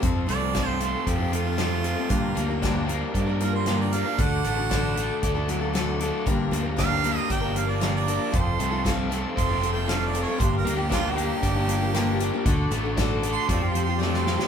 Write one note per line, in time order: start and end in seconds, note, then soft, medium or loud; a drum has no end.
0.00 1.33 F2 medium
0.00 0.25 F2 medium
0.00 1.32 F3 medium
0.00 0.25 F3 medium
0.00 0.26 C4 medium
0.00 0.27 F4 medium
0.00 0.28 A4 loud
0.00 2.09 A4 medium
0.00 2.07 F5 medium
0.00 2.09 C6 medium
0.00 kick loud
0.00 closed hi-hat medium
0.26 0.95 C2 medium
0.26 0.41 F3 medium
0.26 0.79 A3 medium
0.26 0.41 C4 medium
0.26 0.41 F4 medium
0.26 0.39 A4 medium
0.26 0.67 D5 loud
0.26 closed hi-hat medium
0.40 0.52 C4 soft
0.40 0.53 F4 soft
0.40 0.53 A4 soft
0.53 0.78 F3 medium
0.53 0.79 C4 medium
0.53 0.80 F4 medium
0.53 0.81 A4 medium
0.53 kick medium
0.53 snare loud
0.53 closed hi-hat medium
0.67 0.80 C5 loud
0.79 1.19 F3 medium
0.79 1.57 A3 medium
0.79 1.19 C4 medium
0.79 1.19 F4 medium
0.79 1.17 A4 medium
0.79 1.10 C5 medium
0.79 closed hi-hat medium
1.06 1.94 F2 medium
1.06 1.83 C4 medium
1.06 1.34 G4 medium
1.06 kick medium
1.06 closed hi-hat medium
1.18 1.30 C4 soft
1.18 1.31 F4 soft
1.18 1.32 A4 soft
1.31 1.45 F3 medium
1.31 1.45 C4 medium
1.31 1.44 F4 medium
1.31 2.85 F4 medium
1.31 1.42 A4 medium
1.31 closed hi-hat medium
1.43 1.56 C4 soft
1.43 1.57 F4 soft
1.43 1.58 A4 medium
1.57 1.81 F3 medium
1.57 2.10 A3 medium
1.57 1.82 C4 medium
1.57 1.83 F4 medium
1.57 1.84 A4 medium
1.57 snare loud
1.57 closed hi-hat medium
1.82 1.96 F3 medium
1.82 1.97 C4 medium
1.82 1.96 F4 medium
1.82 1.95 A4 medium
1.82 closed hi-hat medium
1.96 2.09 C4 soft
1.96 2.10 F4 soft
1.96 2.10 A4 medium
2.09 2.36 G2 medium
2.09 2.32 G2 loud
2.09 2.36 D3 medium
2.09 2.34 F3 medium
2.09 2.35 A#3 medium
2.09 2.35 D4 medium
2.09 4.17 G4 medium
2.09 2.36 A#4 loud
2.09 4.17 F5 medium
2.09 4.17 A#5 medium
2.09 kick loud
2.09 closed hi-hat medium
2.35 3.03 D2 medium
2.35 2.49 F3 medium
2.35 2.49 A#3 medium
2.35 2.48 D4 medium
2.35 2.47 A#4 medium
2.35 closed hi-hat medium
2.48 2.62 F3 medium
2.48 2.62 A#3 medium
2.48 2.63 D4 medium
2.48 2.62 A#4 medium
2.62 2.89 G2 medium
2.62 2.89 D3 medium
2.62 2.87 F3 medium
2.62 2.87 A#3 medium
2.62 2.88 D4 loud
2.62 2.89 A#4 medium
2.62 kick medium
2.62 snare loud
2.62 closed hi-hat medium
2.88 3.27 F3 medium
2.88 3.28 A#3 medium
2.88 3.26 D4 medium
2.88 3.25 A#4 medium
2.88 closed hi-hat medium
3.14 4.02 G2 medium
3.14 3.94 D4 medium
3.14 kick medium
3.14 closed hi-hat medium
3.27 3.39 F3 soft
3.27 3.40 A#3 soft
3.27 3.41 D4 soft
3.27 3.40 A#4 medium
3.40 3.54 F3 medium
3.40 3.54 A#3 medium
3.40 3.54 D4 medium
3.40 3.54 A#4 medium
3.40 3.52 A#4 medium
3.40 closed hi-hat medium
3.53 3.67 F3 soft
3.53 3.68 A#3 soft
3.53 3.67 D4 soft
3.53 3.67 A#4 medium
3.53 3.80 C5 medium
3.66 3.93 G2 medium
3.66 3.93 D3 medium
3.66 3.90 F3 medium
3.66 3.92 A#3 medium
3.66 3.93 D4 medium
3.66 3.94 A#4 medium
3.66 snare medium
3.66 closed hi-hat medium
3.81 3.95 D5 medium
3.92 4.05 F3 medium
3.92 4.06 A#3 medium
3.92 4.06 D4 medium
3.92 4.04 A#4 medium
3.92 4.22 F5 loud
3.92 closed hi-hat medium
4.05 4.18 F3 soft
4.05 4.18 A#3 soft
4.05 4.17 D4 soft
4.05 4.19 A#4 soft
4.17 4.41 D2 loud
4.17 4.44 D3 medium
4.17 4.43 A3 medium
4.17 4.44 D4 medium
4.17 4.45 F#4 medium
4.17 6.23 A4 medium
4.17 4.45 A4 medium
4.17 6.24 F#5 medium
4.17 5.20 F#5 loud
4.17 6.24 D6 medium
4.17 kick loud
4.17 closed hi-hat medium
4.44 5.10 A1 medium
4.44 4.57 A3 medium
4.44 4.58 D4 medium
4.44 4.57 F#4 medium
4.44 4.55 A4 medium
4.44 closed hi-hat medium
4.56 4.69 D4 soft
4.56 4.70 F#4 soft
4.56 4.70 A4 medium
4.69 4.96 D3 medium
4.69 4.95 A3 medium
4.69 4.96 D4 medium
4.69 4.97 F#4 medium
4.69 4.97 A4 medium
4.69 kick medium
4.69 snare loud
4.69 closed hi-hat medium
4.96 5.35 A3 medium
4.96 5.36 D4 medium
4.96 5.35 F#4 medium
4.96 5.34 A4 medium
4.96 closed hi-hat medium
5.23 6.10 D2 medium
5.23 6.00 D4 medium
5.23 kick medium
5.23 closed hi-hat medium
5.35 5.47 D4 soft
5.35 5.48 F#4 medium
5.35 5.48 A4 medium
5.48 6.26 F#3 medium
5.48 5.61 A3 medium
5.48 5.62 D4 medium
5.48 5.61 F#4 medium
5.48 5.59 A4 medium
5.48 closed hi-hat medium
5.61 5.73 D4 soft
5.61 5.74 F#4 soft
5.61 5.74 A4 medium
5.73 6.00 D3 medium
5.73 5.98 A3 medium
5.73 5.99 D4 medium
5.73 6.00 F#4 medium
5.73 6.01 A4 medium
5.73 snare loud
5.73 closed hi-hat medium
6.00 6.26 A3 medium
6.00 6.26 D4 medium
6.00 6.27 F#4 medium
6.00 6.27 A4 medium
6.00 closed hi-hat medium
6.26 6.48 G1 loud
6.26 6.52 G2 medium
6.26 6.52 D3 medium
6.26 6.50 F3 loud
6.26 6.51 A#3 medium
6.26 6.51 D4 medium
6.26 8.32 G4 medium
6.26 6.53 A#4 medium
6.26 12.42 F5 medium
6.26 8.31 A#5 medium
6.26 kick loud
6.26 closed hi-hat medium
6.51 7.17 D2 medium
6.51 6.64 F3 medium
6.51 6.63 A#3 medium
6.51 6.62 D4 medium
6.51 6.62 A#4 medium
6.51 closed hi-hat medium
6.63 6.76 F3 soft
6.63 6.77 A#3 soft
6.63 6.77 D4 soft
6.63 6.77 A#4 medium
6.77 7.03 G2 medium
6.77 7.03 D3 medium
6.77 7.01 F3 medium
6.77 7.02 A#3 medium
6.77 7.03 D4 medium
6.77 7.04 A#4 medium
6.77 7.29 F5 loud
6.77 kick medium
6.77 snare loud
6.77 closed hi-hat medium
7.02 7.42 F3 medium
7.02 7.42 A#3 medium
7.02 7.41 D4 medium
7.02 7.40 A#4 medium
7.02 closed hi-hat medium
7.30 8.17 G1 medium
7.30 8.06 D4 medium
7.30 7.59 G5 medium
7.30 kick medium
7.30 closed hi-hat medium
7.41 7.53 F3 soft
7.41 7.54 A#3 soft
7.41 7.55 D4 soft
7.41 7.55 A#4 medium
7.55 7.68 F3 medium
7.55 7.67 A#3 medium
7.55 7.67 D4 medium
7.55 7.65 A#4 medium
7.55 7.71 F5 medium
7.55 closed hi-hat medium
7.67 7.80 F3 soft
7.67 7.81 A#3 soft
7.67 7.80 D4 soft
7.67 7.81 A#4 soft
7.67 7.94 D5 medium
7.80 8.07 G2 medium
7.80 8.07 D3 medium
7.80 8.06 F3 medium
7.80 8.06 A#3 medium
7.80 8.07 D4 medium
7.80 8.08 A#4 medium
7.80 snare loud
7.80 closed hi-hat medium
7.96 8.37 D5 medium
8.07 8.30 F3 medium
8.07 8.32 A#3 medium
8.07 8.32 D4 medium
8.07 8.33 A#4 medium
8.07 closed hi-hat medium
8.31 8.55 F1 loud
8.31 9.62 F2 medium
8.31 8.57 F3 medium
8.31 8.58 C4 medium
8.31 8.59 F4 medium
8.31 10.38 A4 medium
8.31 8.59 A4 medium
8.31 10.38 C6 medium
8.31 kick loud
8.31 closed hi-hat medium
8.36 8.85 C5 loud
8.58 9.25 C2 medium
8.58 8.72 F3 medium
8.58 9.08 A3 medium
8.58 8.72 C4 medium
8.58 8.71 F4 medium
8.58 8.70 A4 medium
8.58 closed hi-hat medium
8.71 8.84 C4 soft
8.71 8.85 F4 medium
8.71 8.84 A4 medium
8.84 9.10 F3 medium
8.84 9.11 C4 medium
8.84 9.11 F4 medium
8.84 9.11 A4 medium
8.84 kick medium
8.84 snare loud
8.84 closed hi-hat medium
9.10 9.50 F3 medium
9.10 9.86 A3 medium
9.10 9.50 C4 medium
9.10 9.49 F4 medium
9.10 closed hi-hat medium
9.14 9.48 A4 medium
9.36 10.24 F1 medium
9.36 10.12 C4 medium
9.36 9.70 C6 medium
9.36 kick medium
9.36 closed hi-hat medium
9.49 9.60 C4 soft
9.49 9.62 F4 soft
9.49 9.62 A4 medium
9.61 9.75 F3 medium
9.61 9.75 C4 medium
9.61 9.75 F4 medium
9.61 9.73 A4 medium
9.61 closed hi-hat medium
9.72 9.87 F4 soft
9.72 9.88 A4 medium
9.72 9.91 G5 medium
9.77 9.87 C4 soft
9.86 10.12 F3 medium
9.86 10.40 A3 medium
9.86 10.12 C4 medium
9.86 10.14 F4 medium
9.86 10.14 A4 medium
9.86 10.07 F5 medium
9.86 snare loud
9.86 closed hi-hat medium
10.06 10.22 D5 medium
10.13 10.26 F3 medium
10.13 10.27 C4 medium
10.13 10.27 F4 medium
10.13 10.26 A4 medium
10.13 closed hi-hat medium
10.23 10.41 C#5 medium
10.27 10.39 C4 soft
10.27 10.39 F4 soft
10.27 10.40 A4 soft
10.38 10.62 G1 loud
10.38 10.65 G2 medium
10.38 10.65 D3 medium
10.38 10.63 F3 medium
10.38 10.65 A#3 medium
10.38 10.66 D4 medium
10.38 12.44 G4 medium
10.38 10.66 G4 medium
10.38 10.56 C5 medium
10.38 12.44 A#5 medium
10.38 kick loud
10.38 closed hi-hat medium
10.57 10.74 A#4 medium
10.65 11.31 D2 medium
10.65 10.78 F3 medium
10.65 10.78 A#3 medium
10.65 10.77 D4 medium
10.65 10.76 G4 medium
10.65 closed hi-hat medium
10.75 10.90 D4 medium
10.75 10.91 G4 medium
10.79 10.89 F3 soft
10.79 10.90 A#3 soft
10.89 11.16 G2 medium
10.89 11.17 D3 medium
10.89 11.16 F3 medium
10.89 11.17 A#3 medium
10.89 11.17 D4 medium
10.89 11.12 F4 loud
10.89 11.18 G4 loud
10.89 kick medium
10.89 snare loud
10.89 closed hi-hat medium
11.10 12.60 G4 loud
11.17 11.56 F3 medium
11.17 11.55 A#3 medium
11.17 11.55 D4 medium
11.17 11.54 G4 medium
11.17 closed hi-hat medium
11.42 12.30 G1 loud
11.42 12.19 D4 medium
11.42 kick medium
11.42 closed hi-hat medium
11.55 11.65 F3 soft
11.55 11.67 A#3 soft
11.55 11.67 D4 soft
11.55 11.68 G4 medium
11.66 11.81 F3 medium
11.66 11.81 A#3 medium
11.66 11.81 D4 medium
11.66 11.80 G4 medium
11.66 closed hi-hat medium
11.81 11.94 F3 soft
11.81 11.95 A#3 medium
11.81 11.95 D4 medium
11.81 11.94 G4 medium
11.94 12.20 G2 medium
11.94 12.20 D3 medium
11.94 12.18 F3 medium
11.94 12.20 A#3 medium
11.94 12.20 D4 medium
11.94 12.21 G4 medium
11.94 snare loud
11.94 closed hi-hat medium
12.19 12.33 F3 medium
12.19 12.33 A#3 medium
12.19 12.33 D4 medium
12.19 12.32 G4 medium
12.19 closed hi-hat medium
12.33 12.46 F3 soft
12.33 12.46 A#3 medium
12.33 12.45 D4 medium
12.33 12.46 G4 medium
12.46 12.67 D2 loud
12.46 12.72 D3 medium
12.46 12.70 A3 medium
12.46 12.70 D4 medium
12.46 12.72 F#4 medium
12.46 13.48 A4 medium
12.46 12.73 A4 loud
12.46 13.48 F#5 medium
12.46 13.48 D6 medium
12.46 kick loud
12.46 closed hi-hat medium
12.71 13.36 A1 medium
12.71 12.84 A3 medium
12.71 12.85 D4 medium
12.71 12.84 F#4 medium
12.71 12.82 A4 medium
12.71 closed hi-hat medium
12.83 12.97 D4 medium
12.83 12.98 F#4 medium
12.83 12.97 A4 medium
12.97 13.23 D3 loud
12.97 13.21 A3 medium
12.97 13.23 D4 loud
12.97 13.23 F#4 loud
12.97 13.24 A4 loud
12.97 kick medium
12.97 snare loud
12.97 closed hi-hat medium
13.23 13.48 A3 medium
13.23 13.49 D4 medium
13.23 13.49 F#4 medium
13.23 13.50 A4 medium
13.23 closed hi-hat medium
13.33 13.49 C6 loud
13.49 14.36 F2 loud
13.49 13.62 F3 medium
13.49 13.62 A3 medium
13.49 13.62 C4 medium
13.49 13.61 F4 medium
13.49 14.48 G4 medium
13.49 13.60 G4 medium
13.49 13.70 D5 medium
13.49 14.48 F5 medium
13.49 14.48 A5 medium
13.49 kick medium
13.49 closed hi-hat medium
13.61 13.74 C4 soft
13.61 13.75 F4 soft
13.61 13.74 G4 medium
13.68 13.83 C5 medium
13.74 14.48 F3 medium
13.74 13.87 A3 medium
13.74 13.88 C4 medium
13.74 13.87 F4 medium
13.74 13.86 G4 medium
13.74 closed hi-hat medium
13.83 14.00 G4 medium
13.83 14.02 C6 medium
13.89 13.98 C4 soft
13.89 14.00 F4 soft
13.99 14.25 F3 medium
13.99 14.23 A3 medium
13.99 14.25 C4 medium
13.99 14.26 F4 medium
13.99 14.26 G4 medium
13.99 14.19 D5 medium
13.99 snare medium
14.14 14.48 C5 loud
14.14 snare medium
14.24 14.38 A3 medium
14.24 14.39 C4 medium
14.24 14.38 F4 medium
14.24 14.37 G4 medium
14.24 snare medium
14.38 14.48 C4 soft
14.38 14.48 F4 soft
14.38 14.48 G4 soft
14.38 snare medium